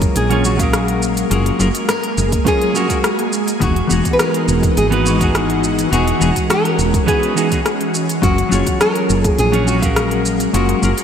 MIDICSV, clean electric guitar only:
0, 0, Header, 1, 2, 480
1, 0, Start_track
1, 0, Tempo, 576923
1, 1091, Time_signature, 4, 2, 24, 8
1, 9183, End_track
2, 0, Start_track
2, 0, Title_t, "Clean electric guitar"
2, 0, Program_c, 0, 27
2, 0, Note_on_c, 0, 54, 76
2, 0, Note_on_c, 0, 61, 80
2, 0, Note_on_c, 0, 65, 76
2, 0, Note_on_c, 0, 68, 79
2, 0, Note_on_c, 0, 73, 86
2, 214, Note_off_c, 0, 54, 0
2, 221, Note_off_c, 0, 61, 0
2, 227, Note_off_c, 0, 65, 0
2, 233, Note_off_c, 0, 68, 0
2, 240, Note_off_c, 0, 73, 0
2, 247, Note_on_c, 0, 54, 95
2, 252, Note_on_c, 0, 61, 86
2, 260, Note_on_c, 0, 65, 90
2, 266, Note_on_c, 0, 68, 86
2, 272, Note_on_c, 0, 73, 101
2, 461, Note_off_c, 0, 54, 0
2, 464, Note_off_c, 0, 61, 0
2, 468, Note_off_c, 0, 65, 0
2, 471, Note_off_c, 0, 68, 0
2, 474, Note_off_c, 0, 73, 0
2, 475, Note_on_c, 0, 54, 92
2, 487, Note_on_c, 0, 61, 91
2, 500, Note_on_c, 0, 77, 86
2, 512, Note_on_c, 0, 68, 89
2, 526, Note_on_c, 0, 70, 104
2, 1053, Note_off_c, 0, 54, 0
2, 1060, Note_off_c, 0, 61, 0
2, 1066, Note_off_c, 0, 77, 0
2, 1072, Note_off_c, 0, 68, 0
2, 1079, Note_off_c, 0, 70, 0
2, 1081, Note_on_c, 0, 54, 72
2, 1087, Note_on_c, 0, 61, 67
2, 1092, Note_on_c, 0, 65, 70
2, 1100, Note_on_c, 0, 68, 68
2, 1106, Note_on_c, 0, 70, 85
2, 1298, Note_off_c, 0, 54, 0
2, 1301, Note_off_c, 0, 61, 0
2, 1303, Note_off_c, 0, 65, 0
2, 1307, Note_off_c, 0, 68, 0
2, 1311, Note_off_c, 0, 70, 0
2, 1320, Note_on_c, 0, 54, 79
2, 1326, Note_on_c, 0, 61, 79
2, 1332, Note_on_c, 0, 65, 78
2, 1337, Note_on_c, 0, 68, 78
2, 1345, Note_on_c, 0, 70, 93
2, 1387, Note_off_c, 0, 54, 0
2, 1390, Note_off_c, 0, 61, 0
2, 1393, Note_off_c, 0, 65, 0
2, 1396, Note_off_c, 0, 68, 0
2, 1400, Note_off_c, 0, 70, 0
2, 2038, Note_on_c, 0, 54, 75
2, 2044, Note_on_c, 0, 61, 69
2, 2050, Note_on_c, 0, 65, 73
2, 2058, Note_on_c, 0, 68, 75
2, 2064, Note_on_c, 0, 73, 86
2, 2257, Note_off_c, 0, 54, 0
2, 2260, Note_off_c, 0, 61, 0
2, 2263, Note_off_c, 0, 65, 0
2, 2266, Note_off_c, 0, 68, 0
2, 2270, Note_off_c, 0, 73, 0
2, 2276, Note_on_c, 0, 54, 77
2, 2282, Note_on_c, 0, 61, 75
2, 2288, Note_on_c, 0, 65, 71
2, 2296, Note_on_c, 0, 68, 69
2, 2300, Note_on_c, 0, 70, 87
2, 2377, Note_off_c, 0, 54, 0
2, 2381, Note_off_c, 0, 61, 0
2, 2383, Note_off_c, 0, 65, 0
2, 2387, Note_off_c, 0, 68, 0
2, 2390, Note_off_c, 0, 70, 0
2, 2396, Note_on_c, 0, 54, 77
2, 2404, Note_on_c, 0, 61, 74
2, 2409, Note_on_c, 0, 65, 72
2, 2415, Note_on_c, 0, 68, 71
2, 2421, Note_on_c, 0, 70, 85
2, 2464, Note_off_c, 0, 54, 0
2, 2467, Note_off_c, 0, 61, 0
2, 2470, Note_off_c, 0, 65, 0
2, 2473, Note_off_c, 0, 68, 0
2, 2476, Note_off_c, 0, 70, 0
2, 2996, Note_on_c, 0, 52, 73
2, 3001, Note_on_c, 0, 59, 66
2, 3009, Note_on_c, 0, 63, 66
2, 3015, Note_on_c, 0, 66, 66
2, 3021, Note_on_c, 0, 68, 80
2, 3103, Note_off_c, 0, 52, 0
2, 3105, Note_off_c, 0, 59, 0
2, 3109, Note_off_c, 0, 63, 0
2, 3112, Note_off_c, 0, 66, 0
2, 3115, Note_off_c, 0, 68, 0
2, 3223, Note_on_c, 0, 52, 86
2, 3236, Note_on_c, 0, 59, 78
2, 3249, Note_on_c, 0, 63, 78
2, 3262, Note_on_c, 0, 66, 76
2, 3274, Note_on_c, 0, 68, 94
2, 4051, Note_off_c, 0, 52, 0
2, 4058, Note_off_c, 0, 59, 0
2, 4064, Note_off_c, 0, 63, 0
2, 4070, Note_off_c, 0, 66, 0
2, 4076, Note_off_c, 0, 68, 0
2, 4079, Note_on_c, 0, 52, 95
2, 4085, Note_on_c, 0, 59, 88
2, 4093, Note_on_c, 0, 63, 82
2, 4099, Note_on_c, 0, 66, 83
2, 4105, Note_on_c, 0, 71, 104
2, 4297, Note_off_c, 0, 52, 0
2, 4300, Note_off_c, 0, 59, 0
2, 4304, Note_off_c, 0, 63, 0
2, 4307, Note_off_c, 0, 66, 0
2, 4307, Note_on_c, 0, 52, 91
2, 4310, Note_off_c, 0, 71, 0
2, 4320, Note_on_c, 0, 59, 85
2, 4331, Note_on_c, 0, 63, 85
2, 4344, Note_on_c, 0, 66, 86
2, 4357, Note_on_c, 0, 68, 104
2, 4889, Note_off_c, 0, 52, 0
2, 4896, Note_off_c, 0, 59, 0
2, 4901, Note_off_c, 0, 63, 0
2, 4908, Note_off_c, 0, 66, 0
2, 4913, Note_on_c, 0, 52, 76
2, 4915, Note_off_c, 0, 68, 0
2, 4921, Note_on_c, 0, 59, 71
2, 4926, Note_on_c, 0, 63, 70
2, 4934, Note_on_c, 0, 66, 67
2, 4940, Note_on_c, 0, 68, 86
2, 5134, Note_off_c, 0, 52, 0
2, 5138, Note_off_c, 0, 59, 0
2, 5141, Note_off_c, 0, 63, 0
2, 5145, Note_off_c, 0, 66, 0
2, 5148, Note_off_c, 0, 68, 0
2, 5154, Note_on_c, 0, 52, 85
2, 5159, Note_on_c, 0, 59, 78
2, 5166, Note_on_c, 0, 63, 80
2, 5172, Note_on_c, 0, 66, 77
2, 5180, Note_on_c, 0, 68, 98
2, 5225, Note_off_c, 0, 52, 0
2, 5227, Note_off_c, 0, 59, 0
2, 5230, Note_off_c, 0, 63, 0
2, 5234, Note_off_c, 0, 66, 0
2, 5237, Note_off_c, 0, 68, 0
2, 5878, Note_on_c, 0, 52, 74
2, 5885, Note_on_c, 0, 59, 70
2, 5891, Note_on_c, 0, 63, 69
2, 5898, Note_on_c, 0, 66, 70
2, 5904, Note_on_c, 0, 71, 86
2, 6097, Note_off_c, 0, 52, 0
2, 6100, Note_off_c, 0, 59, 0
2, 6103, Note_off_c, 0, 63, 0
2, 6106, Note_off_c, 0, 66, 0
2, 6110, Note_off_c, 0, 71, 0
2, 6117, Note_on_c, 0, 52, 77
2, 6124, Note_on_c, 0, 59, 69
2, 6131, Note_on_c, 0, 63, 74
2, 6137, Note_on_c, 0, 66, 69
2, 6142, Note_on_c, 0, 68, 78
2, 6218, Note_off_c, 0, 52, 0
2, 6221, Note_off_c, 0, 59, 0
2, 6225, Note_off_c, 0, 63, 0
2, 6228, Note_off_c, 0, 66, 0
2, 6231, Note_off_c, 0, 68, 0
2, 6239, Note_on_c, 0, 52, 83
2, 6246, Note_on_c, 0, 59, 75
2, 6252, Note_on_c, 0, 63, 69
2, 6259, Note_on_c, 0, 66, 67
2, 6265, Note_on_c, 0, 68, 88
2, 6305, Note_off_c, 0, 52, 0
2, 6308, Note_off_c, 0, 59, 0
2, 6311, Note_off_c, 0, 63, 0
2, 6315, Note_off_c, 0, 66, 0
2, 6318, Note_off_c, 0, 68, 0
2, 6838, Note_on_c, 0, 54, 71
2, 6844, Note_on_c, 0, 61, 63
2, 6850, Note_on_c, 0, 65, 66
2, 6857, Note_on_c, 0, 68, 64
2, 6863, Note_on_c, 0, 70, 81
2, 6944, Note_off_c, 0, 54, 0
2, 6946, Note_off_c, 0, 61, 0
2, 6949, Note_off_c, 0, 65, 0
2, 6953, Note_off_c, 0, 68, 0
2, 6956, Note_off_c, 0, 70, 0
2, 7063, Note_on_c, 0, 54, 82
2, 7077, Note_on_c, 0, 61, 73
2, 7089, Note_on_c, 0, 65, 78
2, 7102, Note_on_c, 0, 68, 81
2, 7114, Note_on_c, 0, 73, 91
2, 7891, Note_off_c, 0, 54, 0
2, 7898, Note_off_c, 0, 61, 0
2, 7904, Note_off_c, 0, 65, 0
2, 7910, Note_off_c, 0, 68, 0
2, 7916, Note_off_c, 0, 73, 0
2, 7921, Note_on_c, 0, 54, 91
2, 7927, Note_on_c, 0, 61, 81
2, 7934, Note_on_c, 0, 65, 86
2, 7942, Note_on_c, 0, 68, 82
2, 7947, Note_on_c, 0, 73, 97
2, 8138, Note_off_c, 0, 54, 0
2, 8141, Note_off_c, 0, 61, 0
2, 8145, Note_off_c, 0, 65, 0
2, 8147, Note_on_c, 0, 54, 91
2, 8149, Note_off_c, 0, 68, 0
2, 8151, Note_off_c, 0, 73, 0
2, 8160, Note_on_c, 0, 61, 82
2, 8172, Note_on_c, 0, 77, 87
2, 8185, Note_on_c, 0, 68, 85
2, 8199, Note_on_c, 0, 70, 104
2, 8729, Note_off_c, 0, 54, 0
2, 8736, Note_off_c, 0, 61, 0
2, 8742, Note_off_c, 0, 77, 0
2, 8748, Note_off_c, 0, 68, 0
2, 8755, Note_off_c, 0, 70, 0
2, 8762, Note_on_c, 0, 54, 78
2, 8767, Note_on_c, 0, 61, 68
2, 8774, Note_on_c, 0, 65, 69
2, 8780, Note_on_c, 0, 68, 67
2, 8786, Note_on_c, 0, 70, 83
2, 8978, Note_off_c, 0, 54, 0
2, 8981, Note_off_c, 0, 61, 0
2, 8985, Note_off_c, 0, 65, 0
2, 8988, Note_off_c, 0, 68, 0
2, 8991, Note_off_c, 0, 70, 0
2, 9000, Note_on_c, 0, 54, 87
2, 9005, Note_on_c, 0, 61, 77
2, 9014, Note_on_c, 0, 65, 78
2, 9019, Note_on_c, 0, 68, 73
2, 9025, Note_on_c, 0, 70, 95
2, 9067, Note_off_c, 0, 54, 0
2, 9070, Note_off_c, 0, 61, 0
2, 9074, Note_off_c, 0, 65, 0
2, 9077, Note_off_c, 0, 68, 0
2, 9080, Note_off_c, 0, 70, 0
2, 9183, End_track
0, 0, End_of_file